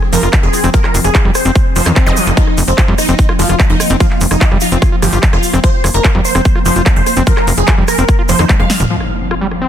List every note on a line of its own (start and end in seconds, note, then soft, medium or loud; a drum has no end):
0.00 8.89 F3 medium
0.00 2.39 C4 medium
0.00 cross-stick soft
0.13 0.19 F1 loud
0.13 0.22 F3 loud
0.13 0.34 A#4 loud
0.13 open hi-hat loud
0.13 shaker loud
0.23 0.29 F1 medium
0.23 0.29 F4 loud
0.23 closed hi-hat medium
0.23 shaker medium
0.32 0.37 F4 medium
0.32 kick loud
0.32 cross-stick medium
0.32 clap loud
0.32 closed hi-hat medium
0.32 shaker soft
0.43 0.49 F1 medium
0.43 0.64 G#4 loud
0.53 0.60 C4 medium
0.53 cross-stick soft
0.53 open hi-hat loud
0.53 shaker loud
0.64 0.70 F1 medium
0.64 0.70 C4 medium
0.64 0.70 C4 loud
0.64 closed hi-hat medium
0.64 shaker medium
0.74 0.80 F3 medium
0.74 0.95 A#4 loud
0.74 kick loud
0.74 closed hi-hat medium
0.74 shaker soft
0.84 0.91 F4 medium
0.84 cross-stick medium
0.84 clap soft
0.94 1.01 F1 loud
0.94 1.01 F4 medium
0.94 open hi-hat loud
0.94 shaker loud
1.04 1.11 F1 medium
1.04 1.26 G#4 loud
1.04 cross-stick soft
1.04 closed hi-hat medium
1.04 shaker medium
1.15 1.18 F4 medium
1.15 kick loud
1.15 clap loud
1.15 closed hi-hat medium
1.15 shaker soft
1.25 1.31 F1 medium
1.25 1.31 G3 loud
1.35 1.63 C5 loud
1.35 cross-stick medium
1.35 open hi-hat loud
1.35 shaker medium
1.45 1.52 F1 medium
1.45 1.52 C4 loud
1.45 closed hi-hat medium
1.45 shaker medium
1.55 kick loud
1.55 cross-stick soft
1.55 closed hi-hat medium
1.55 shaker soft
1.76 1.82 F1 medium
1.76 1.88 F3 medium
1.76 1.97 C5 loud
1.76 open hi-hat loud
1.76 shaker medium
1.85 1.92 F2 medium
1.85 1.95 D#3 medium
1.85 2.43 D#4 medium
1.85 cross-stick medium
1.85 closed hi-hat medium
1.85 shaker medium
1.96 2.18 C4 medium
1.96 kick loud
1.96 clap loud
1.96 closed hi-hat medium
1.96 shaker soft
2.06 2.13 F1 medium
2.06 2.28 D#5 loud
2.06 cross-stick soft
2.06 zap medium
2.17 2.26 F3 medium
2.17 open hi-hat loud
2.17 shaker loud
2.26 2.33 F1 medium
2.26 closed hi-hat medium
2.26 shaker medium
2.37 2.43 F3 medium
2.37 8.92 A#3 medium
2.37 2.58 D#4 loud
2.37 kick loud
2.37 closed hi-hat medium
2.37 shaker soft
2.47 cross-stick soft
2.58 2.64 F1 loud
2.58 open hi-hat loud
2.58 shaker medium
2.68 2.74 F1 medium
2.68 2.89 C4 loud
2.68 closed hi-hat medium
2.68 shaker soft
2.78 2.82 F4 medium
2.78 kick loud
2.78 cross-stick medium
2.78 clap loud
2.78 closed hi-hat medium
2.78 shaker soft
2.88 2.94 F2 medium
2.88 2.94 G3 loud
2.98 3.27 D#4 loud
2.98 cross-stick soft
2.98 open hi-hat loud
2.98 shaker medium
3.08 3.15 F1 medium
3.08 3.15 C4 loud
3.08 closed hi-hat medium
3.08 shaker medium
3.19 kick loud
3.19 closed hi-hat medium
3.19 shaker soft
3.29 3.33 F4 medium
3.29 cross-stick medium
3.39 3.45 F1 medium
3.39 3.48 F3 loud
3.39 3.60 F4 medium
3.39 open hi-hat loud
3.39 shaker medium
3.49 3.56 F1 medium
3.49 3.56 F4 loud
3.49 cross-stick soft
3.49 closed hi-hat medium
3.49 shaker medium
3.60 kick loud
3.60 clap loud
3.60 closed hi-hat medium
3.60 shaker soft
3.70 3.76 F1 medium
3.70 3.91 D#4 loud
3.80 3.87 C4 medium
3.80 cross-stick medium
3.80 open hi-hat loud
3.80 shaker loud
3.89 3.96 F1 medium
3.89 3.97 C4 medium
3.89 3.96 C4 loud
3.89 closed hi-hat medium
3.89 shaker medium
4.00 4.07 F3 medium
4.00 4.22 F4 loud
4.00 kick loud
4.00 cross-stick soft
4.00 closed hi-hat medium
4.00 shaker soft
4.11 clap soft
4.21 4.27 F1 loud
4.21 open hi-hat loud
4.21 shaker medium
4.31 4.37 F1 medium
4.31 4.52 D#4 loud
4.31 cross-stick medium
4.31 closed hi-hat medium
4.31 shaker medium
4.41 4.45 F4 medium
4.41 kick loud
4.41 clap loud
4.41 closed hi-hat medium
4.41 shaker soft
4.51 4.58 F1 medium
4.51 4.58 G3 loud
4.51 cross-stick soft
4.61 4.92 D#4 loud
4.61 4.90 F4 medium
4.61 open hi-hat loud
4.61 shaker medium
4.72 4.78 F1 medium
4.72 4.78 C4 loud
4.72 closed hi-hat medium
4.72 shaker medium
4.82 kick loud
4.82 cross-stick medium
4.82 closed hi-hat medium
4.82 shaker soft
4.92 4.96 F4 medium
5.02 5.09 G1 medium
5.02 5.12 F3 loud
5.02 5.24 G4 loud
5.02 cross-stick soft
5.02 open hi-hat loud
5.02 shaker medium
5.13 5.19 G1 medium
5.13 5.19 F4 loud
5.13 closed hi-hat medium
5.13 shaker medium
5.23 kick loud
5.23 clap loud
5.23 closed hi-hat medium
5.23 shaker soft
5.33 5.39 F1 medium
5.33 5.54 F4 medium
5.33 cross-stick medium
5.43 open hi-hat loud
5.43 shaker medium
5.53 5.60 F1 medium
5.53 5.60 C4 loud
5.53 cross-stick soft
5.53 closed hi-hat medium
5.53 shaker medium
5.63 5.70 F3 medium
5.63 5.85 C5 loud
5.63 kick loud
5.63 closed hi-hat medium
5.63 shaker soft
5.84 5.90 F1 loud
5.84 cross-stick medium
5.84 open hi-hat loud
5.84 shaker medium
5.94 6.01 F1 medium
5.94 6.15 A#4 loud
5.94 closed hi-hat medium
5.94 shaker soft
6.04 6.08 F4 medium
6.04 kick loud
6.04 cross-stick soft
6.04 clap loud
6.04 closed hi-hat medium
6.04 shaker soft
6.15 6.21 F2 medium
6.15 6.21 G3 loud
6.25 6.53 C5 loud
6.25 open hi-hat loud
6.25 shaker medium
6.35 6.41 F1 medium
6.35 6.41 C4 loud
6.35 cross-stick medium
6.35 closed hi-hat medium
6.35 shaker soft
6.45 kick loud
6.45 closed hi-hat medium
6.45 shaker soft
6.55 6.59 F4 medium
6.55 cross-stick soft
6.65 6.72 F1 medium
6.65 6.75 F3 loud
6.65 6.87 C5 loud
6.65 open hi-hat loud
6.65 shaker medium
6.76 6.82 F1 medium
6.76 6.82 F4 loud
6.76 closed hi-hat medium
6.76 shaker medium
6.86 kick loud
6.86 cross-stick medium
6.86 clap loud
6.86 closed hi-hat medium
6.86 shaker soft
6.96 7.03 F1 medium
6.96 7.18 C5 loud
7.06 7.13 C4 medium
7.06 cross-stick soft
7.06 open hi-hat loud
7.06 shaker medium
7.16 7.23 F1 medium
7.16 7.23 C4 medium
7.16 7.23 C4 loud
7.16 closed hi-hat medium
7.16 shaker medium
7.27 7.33 F3 medium
7.27 7.48 A#4 loud
7.27 kick loud
7.27 closed hi-hat medium
7.27 shaker soft
7.37 7.44 F4 medium
7.37 cross-stick medium
7.37 clap soft
7.47 7.54 F1 loud
7.47 7.54 F4 medium
7.47 open hi-hat loud
7.47 shaker medium
7.57 7.64 F1 medium
7.57 7.79 G#4 loud
7.57 closed hi-hat medium
7.57 shaker medium
7.67 7.71 F4 medium
7.67 kick loud
7.67 clap loud
7.67 closed hi-hat medium
7.67 shaker soft
7.78 7.84 F1 medium
7.78 7.84 G3 loud
7.88 8.16 A#4 loud
7.88 cross-stick medium
7.88 open hi-hat loud
7.88 shaker medium
7.98 8.05 F1 medium
7.98 8.05 C4 loud
7.98 closed hi-hat medium
7.98 shaker medium
8.08 kick loud
8.08 cross-stick soft
8.08 closed hi-hat medium
8.08 shaker soft
8.19 8.22 F4 medium
8.29 8.35 F1 medium
8.29 8.38 F3 medium
8.29 8.50 C5 loud
8.29 open hi-hat loud
8.29 shaker medium
8.39 8.45 F2 medium
8.39 8.45 D#3 loud
8.39 8.90 D#4 medium
8.39 cross-stick medium
8.39 shaker soft
8.49 8.53 F3 loud
8.49 kick loud
8.49 clap loud
8.49 closed hi-hat medium
8.49 high tom medium
8.49 shaker soft
8.60 8.66 F1 medium
8.60 8.66 G#3 medium
8.60 8.81 F5 loud
8.60 cross-stick soft
8.60 high tom medium
8.70 snare medium
8.70 open hi-hat loud
8.70 shaker medium
8.80 8.86 F1 medium
8.80 closed hi-hat medium
8.80 mid tom medium
8.80 shaker medium
8.90 8.96 F3 medium
8.90 9.69 F3 medium
8.90 9.69 C4 medium
8.90 impact medium
9.00 cross-stick soft
9.31 9.35 F4 medium
9.31 cross-stick medium
9.41 9.47 G3 loud
9.51 cross-stick soft
9.62 9.68 C4 loud